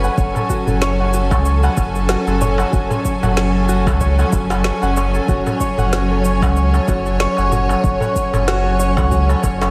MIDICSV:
0, 0, Header, 1, 6, 480
1, 0, Start_track
1, 0, Key_signature, 3, "minor"
1, 0, Tempo, 638298
1, 133, Time_signature, 4, 2, 24, 8
1, 7299, End_track
2, 0, Start_track
2, 0, Title_t, "Harp"
2, 0, Program_c, 0, 46
2, 0, Note_on_c, 0, 66, 80
2, 0, Note_on_c, 0, 69, 78
2, 0, Note_on_c, 0, 73, 72
2, 29, Note_on_c, 0, 78, 78
2, 132, Note_off_c, 0, 73, 0
2, 135, Note_on_c, 0, 73, 81
2, 264, Note_off_c, 0, 69, 0
2, 267, Note_on_c, 0, 69, 74
2, 369, Note_off_c, 0, 66, 0
2, 372, Note_on_c, 0, 66, 95
2, 506, Note_off_c, 0, 69, 0
2, 509, Note_on_c, 0, 69, 75
2, 611, Note_off_c, 0, 73, 0
2, 614, Note_on_c, 0, 73, 104
2, 748, Note_off_c, 0, 78, 0
2, 751, Note_on_c, 0, 78, 79
2, 852, Note_off_c, 0, 66, 0
2, 855, Note_on_c, 0, 66, 76
2, 985, Note_off_c, 0, 69, 0
2, 988, Note_on_c, 0, 69, 75
2, 1091, Note_off_c, 0, 73, 0
2, 1094, Note_on_c, 0, 73, 80
2, 1227, Note_off_c, 0, 78, 0
2, 1230, Note_on_c, 0, 78, 76
2, 1332, Note_off_c, 0, 73, 0
2, 1335, Note_on_c, 0, 73, 69
2, 1466, Note_off_c, 0, 69, 0
2, 1469, Note_on_c, 0, 69, 67
2, 1571, Note_off_c, 0, 66, 0
2, 1574, Note_on_c, 0, 66, 100
2, 1707, Note_off_c, 0, 69, 0
2, 1710, Note_on_c, 0, 69, 76
2, 1811, Note_off_c, 0, 73, 0
2, 1814, Note_on_c, 0, 73, 103
2, 1945, Note_off_c, 0, 78, 0
2, 1948, Note_on_c, 0, 78, 72
2, 2051, Note_off_c, 0, 66, 0
2, 2054, Note_on_c, 0, 66, 77
2, 2185, Note_off_c, 0, 69, 0
2, 2188, Note_on_c, 0, 69, 71
2, 2288, Note_off_c, 0, 73, 0
2, 2291, Note_on_c, 0, 73, 74
2, 2424, Note_off_c, 0, 78, 0
2, 2427, Note_on_c, 0, 78, 75
2, 2528, Note_off_c, 0, 73, 0
2, 2531, Note_on_c, 0, 73, 84
2, 2663, Note_off_c, 0, 69, 0
2, 2666, Note_on_c, 0, 69, 76
2, 2768, Note_off_c, 0, 66, 0
2, 2771, Note_on_c, 0, 66, 102
2, 2905, Note_off_c, 0, 69, 0
2, 2908, Note_on_c, 0, 69, 75
2, 3010, Note_off_c, 0, 73, 0
2, 3013, Note_on_c, 0, 73, 98
2, 3144, Note_off_c, 0, 78, 0
2, 3147, Note_on_c, 0, 78, 78
2, 3251, Note_off_c, 0, 66, 0
2, 3254, Note_on_c, 0, 66, 65
2, 3385, Note_off_c, 0, 69, 0
2, 3388, Note_on_c, 0, 69, 71
2, 3491, Note_off_c, 0, 73, 0
2, 3494, Note_on_c, 0, 73, 84
2, 3626, Note_off_c, 0, 78, 0
2, 3629, Note_on_c, 0, 78, 77
2, 3733, Note_off_c, 0, 73, 0
2, 3736, Note_on_c, 0, 73, 77
2, 3868, Note_off_c, 0, 69, 0
2, 3871, Note_on_c, 0, 69, 74
2, 3973, Note_off_c, 0, 66, 0
2, 3976, Note_on_c, 0, 66, 103
2, 4108, Note_off_c, 0, 69, 0
2, 4111, Note_on_c, 0, 69, 76
2, 4211, Note_off_c, 0, 73, 0
2, 4214, Note_on_c, 0, 73, 96
2, 4347, Note_off_c, 0, 78, 0
2, 4350, Note_on_c, 0, 78, 74
2, 4453, Note_off_c, 0, 66, 0
2, 4456, Note_on_c, 0, 66, 84
2, 4587, Note_off_c, 0, 69, 0
2, 4590, Note_on_c, 0, 69, 77
2, 4693, Note_off_c, 0, 73, 0
2, 4696, Note_on_c, 0, 73, 76
2, 4827, Note_off_c, 0, 78, 0
2, 4830, Note_on_c, 0, 78, 76
2, 4933, Note_off_c, 0, 73, 0
2, 4936, Note_on_c, 0, 73, 84
2, 5068, Note_off_c, 0, 69, 0
2, 5071, Note_on_c, 0, 69, 78
2, 5173, Note_off_c, 0, 66, 0
2, 5176, Note_on_c, 0, 66, 85
2, 5306, Note_off_c, 0, 69, 0
2, 5309, Note_on_c, 0, 69, 67
2, 5411, Note_off_c, 0, 73, 0
2, 5414, Note_on_c, 0, 73, 106
2, 5545, Note_off_c, 0, 78, 0
2, 5548, Note_on_c, 0, 78, 79
2, 5651, Note_off_c, 0, 66, 0
2, 5654, Note_on_c, 0, 66, 83
2, 5785, Note_off_c, 0, 69, 0
2, 5788, Note_on_c, 0, 69, 76
2, 5890, Note_off_c, 0, 73, 0
2, 5893, Note_on_c, 0, 73, 83
2, 6025, Note_off_c, 0, 78, 0
2, 6028, Note_on_c, 0, 78, 70
2, 6129, Note_off_c, 0, 73, 0
2, 6132, Note_on_c, 0, 73, 76
2, 6265, Note_off_c, 0, 69, 0
2, 6268, Note_on_c, 0, 69, 70
2, 6370, Note_off_c, 0, 66, 0
2, 6373, Note_on_c, 0, 66, 107
2, 6505, Note_off_c, 0, 69, 0
2, 6508, Note_on_c, 0, 69, 78
2, 6608, Note_off_c, 0, 73, 0
2, 6611, Note_on_c, 0, 73, 102
2, 6746, Note_off_c, 0, 78, 0
2, 6749, Note_on_c, 0, 78, 77
2, 6849, Note_off_c, 0, 66, 0
2, 6852, Note_on_c, 0, 66, 86
2, 6984, Note_off_c, 0, 69, 0
2, 6987, Note_on_c, 0, 69, 76
2, 7091, Note_off_c, 0, 73, 0
2, 7094, Note_on_c, 0, 73, 92
2, 7225, Note_off_c, 0, 73, 0
2, 7228, Note_on_c, 0, 73, 68
2, 7299, Note_off_c, 0, 66, 0
2, 7299, Note_off_c, 0, 69, 0
2, 7299, Note_off_c, 0, 73, 0
2, 7299, Note_off_c, 0, 78, 0
2, 7299, End_track
3, 0, Start_track
3, 0, Title_t, "String section"
3, 0, Program_c, 1, 48
3, 0, Note_on_c, 1, 54, 76
3, 0, Note_on_c, 1, 61, 69
3, 0, Note_on_c, 1, 71, 83
3, 0, Note_on_c, 1, 80, 63
3, 129, Note_off_c, 1, 71, 0
3, 135, Note_on_c, 1, 69, 75
3, 3971, Note_off_c, 1, 69, 0
3, 3974, Note_on_c, 1, 73, 80
3, 7299, Note_off_c, 1, 54, 0
3, 7299, Note_off_c, 1, 61, 0
3, 7299, Note_off_c, 1, 73, 0
3, 7299, Note_off_c, 1, 80, 0
3, 7299, End_track
4, 0, Start_track
4, 0, Title_t, "Sub bass"
4, 0, Program_c, 2, 38
4, 133, Note_on_c, 2, 30, 101
4, 217, Note_off_c, 2, 30, 0
4, 508, Note_on_c, 2, 30, 88
4, 987, Note_on_c, 2, 37, 84
4, 998, Note_off_c, 2, 30, 0
4, 1269, Note_off_c, 2, 37, 0
4, 1333, Note_on_c, 2, 30, 101
4, 1626, Note_off_c, 2, 30, 0
4, 1708, Note_on_c, 2, 30, 87
4, 1989, Note_off_c, 2, 30, 0
4, 2053, Note_on_c, 2, 30, 92
4, 2137, Note_off_c, 2, 30, 0
4, 2430, Note_on_c, 2, 30, 93
4, 2908, Note_on_c, 2, 37, 87
4, 2919, Note_off_c, 2, 30, 0
4, 3190, Note_off_c, 2, 37, 0
4, 3253, Note_on_c, 2, 30, 102
4, 3546, Note_off_c, 2, 30, 0
4, 3628, Note_on_c, 2, 30, 89
4, 3910, Note_off_c, 2, 30, 0
4, 3974, Note_on_c, 2, 30, 97
4, 4057, Note_off_c, 2, 30, 0
4, 4348, Note_on_c, 2, 30, 91
4, 4828, Note_on_c, 2, 37, 89
4, 4839, Note_off_c, 2, 30, 0
4, 5110, Note_off_c, 2, 37, 0
4, 5174, Note_on_c, 2, 30, 106
4, 5467, Note_off_c, 2, 30, 0
4, 5551, Note_on_c, 2, 30, 88
4, 5831, Note_off_c, 2, 30, 0
4, 5894, Note_on_c, 2, 30, 98
4, 5978, Note_off_c, 2, 30, 0
4, 6270, Note_on_c, 2, 30, 90
4, 6749, Note_on_c, 2, 37, 83
4, 6760, Note_off_c, 2, 30, 0
4, 7030, Note_off_c, 2, 37, 0
4, 7094, Note_on_c, 2, 30, 105
4, 7299, Note_off_c, 2, 30, 0
4, 7299, End_track
5, 0, Start_track
5, 0, Title_t, "Darbuka"
5, 264, Note_on_c, 9, 62, 50
5, 270, Note_on_c, 9, 64, 86
5, 339, Note_off_c, 9, 62, 0
5, 345, Note_off_c, 9, 64, 0
5, 502, Note_on_c, 9, 64, 92
5, 577, Note_off_c, 9, 64, 0
5, 986, Note_on_c, 9, 63, 82
5, 1061, Note_off_c, 9, 63, 0
5, 1230, Note_on_c, 9, 62, 69
5, 1305, Note_off_c, 9, 62, 0
5, 1333, Note_on_c, 9, 62, 47
5, 1334, Note_on_c, 9, 63, 36
5, 1409, Note_off_c, 9, 62, 0
5, 1409, Note_off_c, 9, 63, 0
5, 1713, Note_on_c, 9, 62, 51
5, 1788, Note_off_c, 9, 62, 0
5, 1816, Note_on_c, 9, 64, 76
5, 1891, Note_off_c, 9, 64, 0
5, 1940, Note_on_c, 9, 63, 69
5, 2016, Note_off_c, 9, 63, 0
5, 2184, Note_on_c, 9, 64, 89
5, 2185, Note_on_c, 9, 62, 50
5, 2260, Note_off_c, 9, 64, 0
5, 2261, Note_off_c, 9, 62, 0
5, 2429, Note_on_c, 9, 64, 96
5, 2431, Note_on_c, 9, 63, 57
5, 2504, Note_off_c, 9, 64, 0
5, 2506, Note_off_c, 9, 63, 0
5, 2910, Note_on_c, 9, 63, 75
5, 2985, Note_off_c, 9, 63, 0
5, 3151, Note_on_c, 9, 63, 33
5, 3152, Note_on_c, 9, 62, 67
5, 3226, Note_off_c, 9, 63, 0
5, 3227, Note_off_c, 9, 62, 0
5, 3252, Note_on_c, 9, 62, 53
5, 3327, Note_off_c, 9, 62, 0
5, 3387, Note_on_c, 9, 63, 78
5, 3462, Note_off_c, 9, 63, 0
5, 3624, Note_on_c, 9, 62, 50
5, 3699, Note_off_c, 9, 62, 0
5, 3739, Note_on_c, 9, 62, 62
5, 3814, Note_off_c, 9, 62, 0
5, 4110, Note_on_c, 9, 62, 55
5, 4111, Note_on_c, 9, 64, 75
5, 4185, Note_off_c, 9, 62, 0
5, 4187, Note_off_c, 9, 64, 0
5, 4345, Note_on_c, 9, 64, 82
5, 4420, Note_off_c, 9, 64, 0
5, 4831, Note_on_c, 9, 63, 83
5, 4906, Note_off_c, 9, 63, 0
5, 5067, Note_on_c, 9, 62, 70
5, 5142, Note_off_c, 9, 62, 0
5, 5174, Note_on_c, 9, 62, 53
5, 5175, Note_on_c, 9, 63, 37
5, 5249, Note_off_c, 9, 62, 0
5, 5250, Note_off_c, 9, 63, 0
5, 5539, Note_on_c, 9, 62, 53
5, 5615, Note_off_c, 9, 62, 0
5, 5652, Note_on_c, 9, 64, 81
5, 5728, Note_off_c, 9, 64, 0
5, 5785, Note_on_c, 9, 63, 64
5, 5860, Note_off_c, 9, 63, 0
5, 6020, Note_on_c, 9, 64, 87
5, 6024, Note_on_c, 9, 62, 52
5, 6095, Note_off_c, 9, 64, 0
5, 6099, Note_off_c, 9, 62, 0
5, 6266, Note_on_c, 9, 64, 85
5, 6268, Note_on_c, 9, 63, 67
5, 6341, Note_off_c, 9, 64, 0
5, 6343, Note_off_c, 9, 63, 0
5, 6745, Note_on_c, 9, 63, 77
5, 6820, Note_off_c, 9, 63, 0
5, 6988, Note_on_c, 9, 62, 66
5, 6989, Note_on_c, 9, 63, 33
5, 7063, Note_off_c, 9, 62, 0
5, 7064, Note_off_c, 9, 63, 0
5, 7094, Note_on_c, 9, 62, 59
5, 7169, Note_off_c, 9, 62, 0
5, 7230, Note_on_c, 9, 63, 78
5, 7299, Note_off_c, 9, 63, 0
5, 7299, End_track
6, 0, Start_track
6, 0, Title_t, "Drums"
6, 29, Note_on_c, 9, 82, 35
6, 104, Note_off_c, 9, 82, 0
6, 132, Note_on_c, 9, 36, 124
6, 135, Note_on_c, 9, 82, 46
6, 207, Note_off_c, 9, 36, 0
6, 210, Note_off_c, 9, 82, 0
6, 270, Note_on_c, 9, 82, 31
6, 346, Note_off_c, 9, 82, 0
6, 372, Note_on_c, 9, 36, 58
6, 374, Note_on_c, 9, 82, 78
6, 447, Note_off_c, 9, 36, 0
6, 450, Note_off_c, 9, 82, 0
6, 507, Note_on_c, 9, 82, 32
6, 582, Note_off_c, 9, 82, 0
6, 614, Note_on_c, 9, 38, 98
6, 615, Note_on_c, 9, 82, 46
6, 689, Note_off_c, 9, 38, 0
6, 690, Note_off_c, 9, 82, 0
6, 853, Note_on_c, 9, 82, 84
6, 928, Note_off_c, 9, 82, 0
6, 987, Note_on_c, 9, 36, 99
6, 988, Note_on_c, 9, 82, 35
6, 1062, Note_off_c, 9, 36, 0
6, 1063, Note_off_c, 9, 82, 0
6, 1092, Note_on_c, 9, 82, 47
6, 1168, Note_off_c, 9, 82, 0
6, 1227, Note_on_c, 9, 82, 29
6, 1302, Note_off_c, 9, 82, 0
6, 1331, Note_on_c, 9, 82, 73
6, 1333, Note_on_c, 9, 36, 107
6, 1406, Note_off_c, 9, 82, 0
6, 1408, Note_off_c, 9, 36, 0
6, 1467, Note_on_c, 9, 82, 34
6, 1542, Note_off_c, 9, 82, 0
6, 1571, Note_on_c, 9, 38, 97
6, 1571, Note_on_c, 9, 82, 48
6, 1646, Note_off_c, 9, 38, 0
6, 1647, Note_off_c, 9, 82, 0
6, 1709, Note_on_c, 9, 82, 30
6, 1784, Note_off_c, 9, 82, 0
6, 1813, Note_on_c, 9, 82, 80
6, 1889, Note_off_c, 9, 82, 0
6, 1949, Note_on_c, 9, 82, 33
6, 2025, Note_off_c, 9, 82, 0
6, 2053, Note_on_c, 9, 36, 110
6, 2053, Note_on_c, 9, 82, 41
6, 2128, Note_off_c, 9, 36, 0
6, 2128, Note_off_c, 9, 82, 0
6, 2189, Note_on_c, 9, 82, 31
6, 2264, Note_off_c, 9, 82, 0
6, 2293, Note_on_c, 9, 36, 58
6, 2294, Note_on_c, 9, 82, 73
6, 2368, Note_off_c, 9, 36, 0
6, 2369, Note_off_c, 9, 82, 0
6, 2431, Note_on_c, 9, 82, 33
6, 2506, Note_off_c, 9, 82, 0
6, 2535, Note_on_c, 9, 38, 100
6, 2535, Note_on_c, 9, 82, 45
6, 2610, Note_off_c, 9, 38, 0
6, 2610, Note_off_c, 9, 82, 0
6, 2773, Note_on_c, 9, 82, 77
6, 2848, Note_off_c, 9, 82, 0
6, 2908, Note_on_c, 9, 36, 102
6, 2909, Note_on_c, 9, 82, 34
6, 2983, Note_off_c, 9, 36, 0
6, 2984, Note_off_c, 9, 82, 0
6, 3013, Note_on_c, 9, 36, 59
6, 3013, Note_on_c, 9, 82, 43
6, 3088, Note_off_c, 9, 36, 0
6, 3088, Note_off_c, 9, 82, 0
6, 3148, Note_on_c, 9, 82, 29
6, 3223, Note_off_c, 9, 82, 0
6, 3252, Note_on_c, 9, 82, 77
6, 3253, Note_on_c, 9, 36, 106
6, 3327, Note_off_c, 9, 82, 0
6, 3328, Note_off_c, 9, 36, 0
6, 3386, Note_on_c, 9, 38, 27
6, 3386, Note_on_c, 9, 82, 30
6, 3461, Note_off_c, 9, 38, 0
6, 3461, Note_off_c, 9, 82, 0
6, 3492, Note_on_c, 9, 38, 101
6, 3493, Note_on_c, 9, 82, 44
6, 3567, Note_off_c, 9, 38, 0
6, 3568, Note_off_c, 9, 82, 0
6, 3629, Note_on_c, 9, 82, 29
6, 3704, Note_off_c, 9, 82, 0
6, 3734, Note_on_c, 9, 82, 74
6, 3809, Note_off_c, 9, 82, 0
6, 3869, Note_on_c, 9, 82, 30
6, 3944, Note_off_c, 9, 82, 0
6, 3973, Note_on_c, 9, 36, 118
6, 3975, Note_on_c, 9, 82, 41
6, 4048, Note_off_c, 9, 36, 0
6, 4050, Note_off_c, 9, 82, 0
6, 4110, Note_on_c, 9, 82, 31
6, 4185, Note_off_c, 9, 82, 0
6, 4213, Note_on_c, 9, 36, 53
6, 4215, Note_on_c, 9, 82, 76
6, 4288, Note_off_c, 9, 36, 0
6, 4290, Note_off_c, 9, 82, 0
6, 4351, Note_on_c, 9, 82, 30
6, 4427, Note_off_c, 9, 82, 0
6, 4458, Note_on_c, 9, 38, 100
6, 4458, Note_on_c, 9, 82, 45
6, 4533, Note_off_c, 9, 38, 0
6, 4534, Note_off_c, 9, 82, 0
6, 4697, Note_on_c, 9, 82, 83
6, 4772, Note_off_c, 9, 82, 0
6, 4828, Note_on_c, 9, 36, 101
6, 4830, Note_on_c, 9, 82, 31
6, 4903, Note_off_c, 9, 36, 0
6, 4905, Note_off_c, 9, 82, 0
6, 4935, Note_on_c, 9, 82, 42
6, 5010, Note_off_c, 9, 82, 0
6, 5069, Note_on_c, 9, 82, 31
6, 5145, Note_off_c, 9, 82, 0
6, 5174, Note_on_c, 9, 36, 105
6, 5174, Note_on_c, 9, 82, 68
6, 5249, Note_off_c, 9, 36, 0
6, 5249, Note_off_c, 9, 82, 0
6, 5309, Note_on_c, 9, 82, 29
6, 5384, Note_off_c, 9, 82, 0
6, 5415, Note_on_c, 9, 38, 101
6, 5415, Note_on_c, 9, 82, 43
6, 5490, Note_off_c, 9, 38, 0
6, 5491, Note_off_c, 9, 82, 0
6, 5550, Note_on_c, 9, 82, 29
6, 5625, Note_off_c, 9, 82, 0
6, 5656, Note_on_c, 9, 82, 70
6, 5732, Note_off_c, 9, 82, 0
6, 5792, Note_on_c, 9, 82, 33
6, 5867, Note_off_c, 9, 82, 0
6, 5894, Note_on_c, 9, 36, 122
6, 5896, Note_on_c, 9, 82, 41
6, 5969, Note_off_c, 9, 36, 0
6, 5971, Note_off_c, 9, 82, 0
6, 6031, Note_on_c, 9, 82, 32
6, 6106, Note_off_c, 9, 82, 0
6, 6134, Note_on_c, 9, 36, 57
6, 6136, Note_on_c, 9, 82, 71
6, 6209, Note_off_c, 9, 36, 0
6, 6211, Note_off_c, 9, 82, 0
6, 6272, Note_on_c, 9, 82, 33
6, 6347, Note_off_c, 9, 82, 0
6, 6376, Note_on_c, 9, 38, 107
6, 6377, Note_on_c, 9, 82, 44
6, 6451, Note_off_c, 9, 38, 0
6, 6452, Note_off_c, 9, 82, 0
6, 6615, Note_on_c, 9, 82, 80
6, 6691, Note_off_c, 9, 82, 0
6, 6749, Note_on_c, 9, 36, 92
6, 6750, Note_on_c, 9, 82, 33
6, 6824, Note_off_c, 9, 36, 0
6, 6825, Note_off_c, 9, 82, 0
6, 6854, Note_on_c, 9, 36, 58
6, 6854, Note_on_c, 9, 82, 45
6, 6929, Note_off_c, 9, 36, 0
6, 6930, Note_off_c, 9, 82, 0
6, 6991, Note_on_c, 9, 82, 30
6, 7066, Note_off_c, 9, 82, 0
6, 7094, Note_on_c, 9, 36, 99
6, 7096, Note_on_c, 9, 82, 72
6, 7169, Note_off_c, 9, 36, 0
6, 7171, Note_off_c, 9, 82, 0
6, 7230, Note_on_c, 9, 38, 32
6, 7231, Note_on_c, 9, 82, 31
6, 7299, Note_off_c, 9, 38, 0
6, 7299, Note_off_c, 9, 82, 0
6, 7299, End_track
0, 0, End_of_file